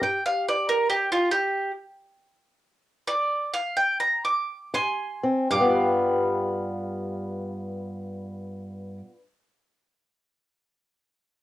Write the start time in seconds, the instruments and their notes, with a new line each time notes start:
Already playing: steel-string acoustic guitar G4
0.01 steel-string acoustic guitar G2, mandolin G5
0.26 mandolin F5
0.49 mandolin D5
0.69 mandolin A#4
0.90 mandolin G4
1.12 mandolin F4
1.31 mandolin G4
3.07 mandolin D5
3.54 mandolin F5
3.77 mandolin G5
4.00 mandolin A#5
4.25 mandolin D6
4.74 steel-string acoustic guitar G#2, mandolin G#5 C6
5.23 steel-string acoustic guitar C4
5.50 steel-string acoustic guitar G2, mandolin F5 D6
5.55 steel-string acoustic guitar G3
5.61 steel-string acoustic guitar B3
5.65 steel-string acoustic guitar F4
5.70 steel-string acoustic guitar B4